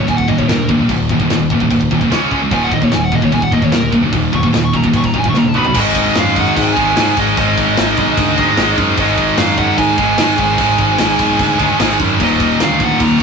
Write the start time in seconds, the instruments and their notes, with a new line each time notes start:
Already playing: distorted electric guitar D#2 A#2 D#3
0.00 distorted electric guitar D#2
0.08 picked electric bass D#1, distorted electric guitar D#2 A#2, lead electric guitar G#5, kick, crash
0.16 lead electric guitar F#5, kick
0.27 picked electric bass D#1, distorted electric guitar D#2 A#2 D#3, lead electric guitar D#5, kick
0.38 distorted electric guitar D#2 A#2, lead electric guitar C#5, kick
0.48 picked electric bass D2, distorted electric guitar D#2 A#2 D#3, lead electric guitar A#4, snare, crash
0.69 distorted electric guitar D#2 A#2, kick
0.81 distorted electric guitar D#2 A#2
0.89 picked electric bass D#1, distorted electric guitar D#2 A#2 D#3, kick, crash
1.09 picked electric bass D#1, distorted electric guitar D#2 A#2, kick
1.20 distorted electric guitar D#2 A#2, kick
1.30 picked electric bass D#1, distorted electric guitar D#2 A#2, snare, crash
1.50 picked electric bass D#1, distorted electric guitar D#2 A#2, kick
1.60 distorted electric guitar D#2 A#2, kick
1.71 picked electric bass D#1, distorted electric guitar D#2 A#2, kick, crash
1.81 kick
1.90 picked electric bass D#1, distorted electric guitar D#2 A#2 D#3, kick
2.01 distorted electric guitar D#2 A#2, kick
2.10 picked electric bass C#2, distorted electric guitar C#3 G#3 C#4, snare, crash
2.31 picked electric bass C#2, distorted electric guitar C#3 G#3 C#4, kick
2.41 distorted electric guitar C#3 G#3
2.51 picked electric bass D#1, distorted electric guitar D#2 A#2 D#3, lead electric guitar G#5, kick, crash
2.64 lead electric guitar F#5
2.71 picked electric bass D#1, distorted electric guitar D#2 A#2, lead electric guitar D#5, kick
2.81 distorted electric guitar D#2 A#2, lead electric guitar C#5, kick
2.92 picked electric bass D#1, distorted electric guitar D#2 A#2, lead electric guitar G#5, snare, crash
3.05 lead electric guitar F#5
3.12 picked electric bass D#1, distorted electric guitar D#2 A#2, lead electric guitar D#5, kick
3.22 distorted electric guitar D#2 A#2, lead electric guitar C#5, kick
3.32 picked electric bass D#1, distorted electric guitar D#2 A#2, lead electric guitar G#5, kick, crash
3.42 lead electric guitar F#5, kick
3.51 picked electric bass D#1, distorted electric guitar D#2 A#2 D#3, lead electric guitar D#5, kick
3.56 distorted electric guitar D#2
3.61 distorted electric guitar D#2 A#2, lead electric guitar C#5, kick
3.71 picked electric bass D2, distorted electric guitar D#2 A#2 D#3, lead electric guitar A#4, snare, crash
3.92 distorted electric guitar D#2 A#2, kick
4.02 distorted electric guitar D#2 A#2
4.13 picked electric bass D#1, distorted electric guitar D#2 A#2 D#3, kick, crash
4.33 picked electric bass D#1, distorted electric guitar D#2 A#2, lead electric guitar C#6, kick
4.43 distorted electric guitar D#2 A#2, kick
4.52 picked electric bass D#1, distorted electric guitar D#2 A#2, snare, crash
4.65 lead electric guitar C#6
4.73 picked electric bass D#1, distorted electric guitar D#2 A#2, lead electric guitar A#5, kick
4.84 distorted electric guitar D#2 A#2, kick
4.93 picked electric bass D#1, distorted electric guitar D#2 A#2, lead electric guitar C#6, kick, crash
5.04 lead electric guitar A#5, kick
5.14 picked electric bass D#1, distorted electric guitar D#2 A#2 D#3, kick
5.18 lead electric guitar G#5
5.24 distorted electric guitar D#2 A#2, kick
5.29 lead electric guitar C#6
5.34 picked electric bass D2, distorted electric guitar D#2 A#2, snare
5.38 distorted electric guitar D#3, lead electric guitar A#5
5.44 high tom
5.49 lead electric guitar A5
5.54 picked electric bass B1, distorted electric guitar B2 F#3 B3, mid tom
5.58 lead electric guitar B5
5.65 distorted electric guitar B2 F#3, floor tom
5.74 picked electric bass G#1, distorted electric guitar G#2 D#3 G#3, kick, crash
5.80 lead electric guitar D#5
5.95 kick, crash
6.15 picked electric bass F#2, lead electric guitar F5, snare, crash
6.35 distorted electric guitar D#3 G#3, kick, crash
6.39 distorted electric guitar G#2, lead electric guitar F#5
6.56 picked electric bass G#2, lead electric guitar G#5, kick, crash
6.77 picked electric bass G#1, distorted electric guitar G#2 D#3 G#3, kick, crash
6.97 distorted electric guitar G#2 D#3 G#3, picked electric bass G#2, snare, crash
7.17 picked electric bass G#1, lead electric guitar D#5, kick, crash
7.37 picked electric bass G#1, distorted electric guitar G#2 D#3 G#3, kick, crash
7.58 picked electric bass G#1, kick, crash
7.77 picked electric bass G#1, snare, crash
7.97 picked electric bass B1, distorted electric guitar G#2 D#3 G#3, kick, crash
8.17 picked electric bass D2, kick, crash
8.38 distorted electric guitar G#2 D#3 G#3, kick, crash
8.57 picked electric bass G#1, distorted electric guitar G#2 D#3 G#3, snare, crash
8.78 picked electric bass F#2, kick, crash
8.97 picked electric bass G#1, distorted electric guitar G#2 D#3, lead electric guitar D#5, kick, crash
9.02 distorted electric guitar G#3
9.17 kick, crash
9.37 picked electric bass F#2, lead electric guitar F5, snare, crash
9.57 distorted electric guitar G#2 D#3 G#3, lead electric guitar F#5, kick, crash
9.78 picked electric bass G#2, lead electric guitar G#5, kick, crash
9.97 picked electric bass G#1, distorted electric guitar G#2 D#3 G#3, kick, crash
10.17 distorted electric guitar G#2 D#3 G#3, picked electric bass G#2, snare, crash
10.38 picked electric bass G#1, lead electric guitar G#5, kick, crash
10.57 picked electric bass G#1, distorted electric guitar G#2 D#3 G#3, kick, crash
10.78 picked electric bass G#1, kick, crash
10.98 picked electric bass G#1, snare, crash
11.19 picked electric bass B1, distorted electric guitar D#3 G#3, kick, crash
11.23 distorted electric guitar G#2
11.39 picked electric bass D2, kick, crash
11.58 distorted electric guitar G#2 D#3 G#3, kick, crash
11.79 picked electric bass G#1, distorted electric guitar G#2 D#3 G#3, snare, crash
11.99 picked electric bass F#2, kick, crash
12.19 picked electric bass D#1, distorted electric guitar D#2 A#2 D#3, kick, crash
12.24 lead electric guitar D#5
12.40 kick, crash
12.60 picked electric bass D2, lead electric guitar F5, snare, crash
12.79 distorted electric guitar A#2 D#3, kick, crash
12.84 distorted electric guitar D#2, lead electric guitar F#5
13.00 picked electric bass D#2, lead electric guitar A#5, kick, crash
13.19 distorted electric guitar D#3